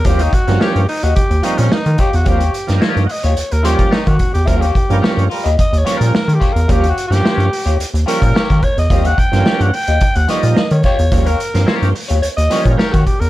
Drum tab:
HH |xxxx-xoxxxxx-xxx|xxxx-xoxxxxx-xxx|xxxx-xoxxxxx-xxx|xxxx-xoxxxxx-xxx|
SD |---oo-------o---|---oo-------o---|----o-----o-o---|---oo-------o---|
BD |o-o-----o-----o-|o----------o-oo-|o-o-----o-----o-|o----------o-oo-|

HH |xxxx-xoxxxxx-xxx|xxxx-xoxxxxx-xxx|
SD |---oo-----o-o---|---oo-----o-o---|
BD |o-o-----o-----o-|o----------o-oo-|